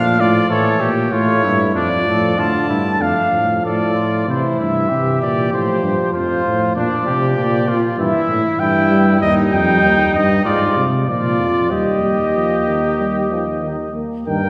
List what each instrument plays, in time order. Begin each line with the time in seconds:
Already playing: bass trombone A#2, euphonium F3, trumpet D4 F5
0.19 bass trombone A2, trumpet F4 D5
0.50 bass trombone A2, euphonium E3, trumpet A4 C#5
0.81 bass trombone A#2, trumpet G4
1.12 bass trombone A2, euphonium A3, trumpet F4 C#5
1.44 bass trombone G2, trumpet E4
1.75 bass trombone F2, euphonium F3, trumpet D4 D5
2.07 bass trombone A2, trumpet A4
2.37 bass trombone A2, euphonium D3, trumpet F4 A5
2.69 bass trombone G2, trumpet E4
2.99 bass trombone F2, euphonium A3, trumpet D4 F5
3.31 bass trombone A2, euphonium F3
3.63 bass trombone A2, trumpet A4 D5
3.95 trumpet F4
4.27 bass trombone C3, euphonium E3, trumpet E4 C5
4.59 bass trombone G2, trumpet E5
4.89 bass trombone C3, euphonium E3, trumpet G4
5.21 bass trombone A#2, trumpet D5
5.51 bass trombone A2, euphonium F3, trumpet C5
5.83 bass trombone G2
6.13 bass trombone F2, trumpet F4 C5
6.45 bass trombone A2
6.75 bass trombone A#2, euphonium F3, trumpet D4 D5
7.06 bass trombone C3, trumpet G4
7.36 bass trombone A#2, trumpet D5
7.68 bass trombone A#2, trumpet F4
7.98 bass trombone G2, euphonium E3, trumpet E4 E5
8.28 bass trombone A2
8.58 bass trombone G2, euphonium E3, trumpet E4 G5
8.90 euphonium G3
9.20 bass trombone D#2, euphonium G3, trumpet D#4 D#5
9.52 bass trombone F2, trumpet G5
9.83 bass trombone D#2
10.14 bass trombone G2, trumpet D#5
10.44 bass trombone G#2, euphonium G#3, trumpet F4 D5
10.77 bass trombone C3
11.07 bass trombone A#2, euphonium F3, trumpet F4 D5
11.40 bass trombone F2
11.71 bass trombone D#2, euphonium G3, trumpet G4 D#5
12.03 euphonium G3
12.35 euphonium F3
12.67 euphonium D#3
12.99 euphonium G3
13.31 euphonium F3
13.63 euphonium D#3
13.94 euphonium A#3
14.27 bass trombone G2, euphonium D#3, trumpet A#4 G5